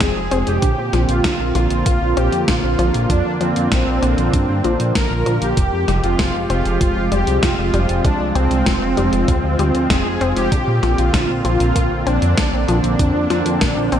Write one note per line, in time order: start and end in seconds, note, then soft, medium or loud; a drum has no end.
0.00 0.13 F1 loud
0.00 0.58 F3 medium
0.00 0.58 G#3 medium
0.00 0.22 G#3 medium
0.00 0.58 C4 medium
0.00 0.48 G#4 loud
0.00 0.58 G5 medium
0.00 kick loud
0.00 snare loud
0.00 closed hi-hat medium
0.16 0.29 F1 medium
0.31 0.44 F1 medium
0.31 0.53 C4 loud
0.31 closed hi-hat medium
0.47 0.59 F1 medium
0.47 1.11 G4 loud
0.47 closed hi-hat medium
0.62 0.75 A#1 loud
0.62 5.53 D3 medium
0.62 0.84 D3 medium
0.62 5.53 A#3 medium
0.62 3.07 C4 medium
0.62 5.53 F4 medium
0.62 kick loud
0.62 closed hi-hat medium
0.78 0.90 A#2 medium
0.93 1.06 A#1 medium
0.93 1.23 F3 loud
0.93 snare soft
0.93 closed hi-hat medium
1.09 1.21 A#1 medium
1.09 1.52 F4 medium
1.09 closed hi-hat medium
1.24 1.37 A#1 loud
1.24 1.46 D3 medium
1.24 kick loud
1.24 snare loud
1.24 closed hi-hat medium
1.40 1.52 A#1 medium
1.55 1.68 A#1 medium
1.55 1.77 F3 loud
1.55 1.84 F4 medium
1.55 closed hi-hat medium
1.71 1.83 A#1 medium
1.71 closed hi-hat medium
1.86 1.99 A#1 loud
1.86 2.08 A#3 medium
1.86 2.18 F4 loud
1.86 kick loud
1.86 closed hi-hat medium
2.02 2.14 A#1 medium
2.17 2.29 A#1 medium
2.17 2.39 C4 loud
2.17 2.49 G4 medium
2.17 closed hi-hat medium
2.32 2.45 F2 medium
2.32 closed hi-hat medium
2.48 2.60 A#1 loud
2.48 2.70 D3 medium
2.48 3.12 F4 medium
2.48 kick loud
2.48 snare loud
2.48 closed hi-hat medium
2.63 2.76 A#1 medium
2.79 2.91 A#1 medium
2.79 3.08 F3 loud
2.79 closed hi-hat medium
2.94 3.07 A#1 medium
2.94 closed hi-hat medium
3.10 3.22 F2 loud
3.10 3.32 D3 medium
3.10 3.42 D4 loud
3.10 5.55 D4 medium
3.10 kick loud
3.10 closed hi-hat medium
3.25 3.38 F2 medium
3.41 3.53 F2 medium
3.41 3.63 F3 loud
3.41 4.91 C4 loud
3.41 closed hi-hat medium
3.56 3.69 F2 medium
3.56 closed hi-hat medium
3.72 3.84 A#1 loud
3.72 3.94 A#3 medium
3.72 kick loud
3.72 snare loud
3.72 closed hi-hat medium
3.87 4.00 A#1 medium
4.02 4.15 A#1 medium
4.02 4.24 C4 loud
4.02 closed hi-hat medium
4.18 4.31 A#1 medium
4.18 closed hi-hat medium
4.33 4.46 G2 loud
4.33 4.55 D3 medium
4.33 kick loud
4.33 closed hi-hat medium
4.49 4.61 G2 medium
4.64 4.77 A#1 medium
4.64 4.94 F3 loud
4.64 closed hi-hat medium
4.80 4.92 A#1 medium
4.80 closed hi-hat medium
4.95 5.08 A#1 loud
4.95 5.17 D3 medium
4.95 5.43 A#4 loud
4.95 kick loud
4.95 snare loud
4.95 closed hi-hat medium
5.11 5.23 A#1 medium
5.26 5.39 A#1 medium
5.26 5.48 F3 loud
5.26 closed hi-hat medium
5.42 5.54 A#1 medium
5.42 6.05 G4 loud
5.42 closed hi-hat medium
5.57 5.70 F1 loud
5.57 5.79 F3 medium
5.57 10.48 F3 medium
5.57 10.48 G#3 medium
5.57 14.00 C4 medium
5.57 8.02 G4 medium
5.57 kick loud
5.57 closed hi-hat medium
5.73 5.85 F2 medium
5.88 6.01 F1 medium
5.88 6.10 G3 loud
5.88 snare soft
5.88 closed hi-hat medium
6.04 6.16 F1 medium
6.04 6.47 F4 loud
6.04 closed hi-hat medium
6.19 6.32 F1 loud
6.19 6.41 G#3 medium
6.19 kick loud
6.19 snare loud
6.19 closed hi-hat medium
6.35 6.47 F1 medium
6.50 6.63 F1 loud
6.50 6.72 C4 loud
6.50 6.79 F4 medium
6.50 closed hi-hat medium
6.65 6.78 F1 medium
6.65 closed hi-hat medium
6.81 6.93 F1 loud
6.81 7.03 F3 medium
6.81 7.13 F4 loud
6.81 kick loud
6.81 closed hi-hat medium
6.96 7.09 F1 medium
7.12 7.24 F1 medium
7.12 7.41 G3 loud
7.12 7.44 G4 loud
7.12 closed hi-hat medium
7.27 7.40 C2 medium
7.27 closed hi-hat medium
7.43 7.55 F1 loud
7.43 7.65 F3 medium
7.43 8.06 F4 loud
7.43 kick loud
7.43 snare loud
7.43 closed hi-hat medium
7.58 7.71 F1 medium
7.74 7.86 F1 medium
7.74 7.96 G3 loud
7.74 closed hi-hat medium
7.89 8.02 F1 medium
7.89 closed hi-hat medium
8.05 8.17 C2 loud
8.05 8.26 G#3 medium
8.05 8.36 D4 loud
8.05 12.95 F4 medium
8.05 kick loud
8.05 closed hi-hat medium
8.20 8.33 C2 medium
8.35 8.48 C2 medium
8.35 8.57 C4 loud
8.35 9.95 C4 loud
8.35 closed hi-hat medium
8.51 8.63 C2 medium
8.51 closed hi-hat medium
8.66 8.79 F1 loud
8.66 8.88 F3 medium
8.66 kick loud
8.66 snare loud
8.66 closed hi-hat medium
8.82 8.94 F1 medium
8.97 9.10 F1 medium
8.97 9.27 G3 loud
8.97 closed hi-hat medium
9.13 9.25 F1 medium
9.13 closed hi-hat medium
9.28 9.41 D2 loud
9.28 9.50 F3 medium
9.28 kick loud
9.28 closed hi-hat medium
9.44 9.56 D2 medium
9.59 9.72 D2 medium
9.59 9.81 G3 loud
9.59 closed hi-hat medium
9.75 9.87 D2 medium
9.75 closed hi-hat medium
9.90 10.03 F1 loud
9.90 10.12 G#3 medium
9.90 10.38 G#4 loud
9.90 kick loud
9.90 snare loud
9.90 closed hi-hat medium
10.06 10.18 F1 medium
10.21 10.34 F1 medium
10.21 10.43 C4 loud
10.21 closed hi-hat medium
10.36 10.49 F1 medium
10.36 11.00 G4 loud
10.36 closed hi-hat medium
10.52 10.65 A#1 loud
10.52 10.74 D3 medium
10.52 14.00 D3 medium
10.52 14.00 A#3 medium
10.52 kick loud
10.52 closed hi-hat medium
10.67 10.80 A#2 medium
10.83 10.95 A#1 medium
10.83 11.12 F3 loud
10.83 snare soft
10.83 closed hi-hat medium
10.98 11.11 A#1 medium
10.98 11.43 F4 loud
10.98 closed hi-hat medium
11.14 11.26 A#1 loud
11.14 11.36 D3 medium
11.14 kick loud
11.14 snare loud
11.14 closed hi-hat medium
11.29 11.42 A#1 medium
11.45 11.57 A#1 medium
11.45 11.67 F3 loud
11.45 12.08 F4 loud
11.45 closed hi-hat medium
11.60 11.73 A#1 medium
11.60 closed hi-hat medium
11.76 11.88 A#1 loud
11.76 11.98 A#3 medium
11.76 kick loud
11.76 closed hi-hat medium
11.91 12.04 A#1 medium
12.07 12.19 A#1 medium
12.07 12.29 C4 loud
12.07 12.64 D4 loud
12.07 closed hi-hat medium
12.22 12.35 F2 medium
12.22 closed hi-hat medium
12.38 12.50 A#1 loud
12.38 12.59 D3 medium
12.38 kick loud
12.38 snare loud
12.38 closed hi-hat medium
12.53 12.66 A#1 medium
12.68 12.81 A#1 medium
12.68 12.98 F3 loud
12.68 14.00 D4 loud
12.68 closed hi-hat medium
12.84 12.96 A#1 medium
12.84 closed hi-hat medium
12.99 13.12 F2 loud
12.99 13.21 D3 medium
12.99 14.00 G5 medium
12.99 kick loud
12.99 closed hi-hat medium
13.15 13.27 F2 medium
13.30 13.43 F2 medium
13.30 13.52 F3 loud
13.30 snare soft
13.30 closed hi-hat medium
13.46 13.58 F2 medium
13.46 closed hi-hat medium
13.61 13.74 A#1 loud
13.61 13.83 A#3 medium
13.61 kick loud
13.61 snare loud
13.61 closed hi-hat medium
13.77 13.89 A#1 medium
13.92 14.00 A#1 medium
13.92 14.00 C4 loud
13.92 closed hi-hat medium